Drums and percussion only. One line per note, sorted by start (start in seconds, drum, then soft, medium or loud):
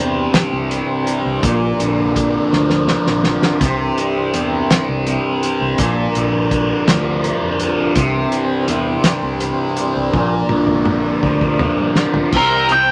0.34 snare loud
0.34 closed hi-hat medium
0.71 closed hi-hat medium
1.07 closed hi-hat medium
1.43 kick loud
1.43 closed hi-hat medium
1.80 closed hi-hat medium
2.16 kick medium
2.16 closed hi-hat medium
2.53 snare medium
2.70 snare medium
2.88 snare medium
3.07 snare medium
3.24 snare medium
3.42 snare medium
3.61 kick loud
3.61 closed hi-hat medium
3.98 closed hi-hat medium
4.34 closed hi-hat medium
4.71 snare loud
4.71 closed hi-hat medium
5.07 closed hi-hat medium
5.43 closed hi-hat medium
5.78 kick loud
5.78 closed hi-hat medium
6.15 closed hi-hat medium
6.51 kick medium
6.51 closed hi-hat medium
6.88 snare loud
6.88 closed hi-hat medium
7.24 closed hi-hat medium
7.59 closed hi-hat medium
7.95 kick loud
7.95 closed hi-hat medium
8.32 closed hi-hat medium
8.68 closed hi-hat medium
9.04 snare loud
9.04 closed hi-hat loud
9.40 closed hi-hat medium
9.77 closed hi-hat medium
10.14 kick loud
10.49 high tom medium
10.67 mid tom medium
10.85 mid tom medium
11.23 kick medium
11.41 kick medium
11.59 mid tom medium
11.95 snare loud
12.14 floor tom medium
12.32 kick loud
12.32 crash medium
12.69 closed hi-hat soft